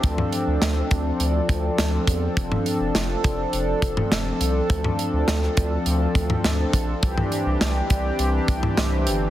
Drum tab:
HH |x-x-x-x-x-x-x-x-|x-x-x-x-x-x-x-x-|x-x-x-x-x-x-x-x-|x-x-x-x-x-x-x-x-|
SD |----o-------o---|----o-------o---|----o-------o---|----o-------o---|
T2 |-o--------------|-o---------o----|-o---------o----|-o---------o----|
BD |o-----o---o---o-|o-----o---o-----|o-----o---o---o-|o-----o---o-----|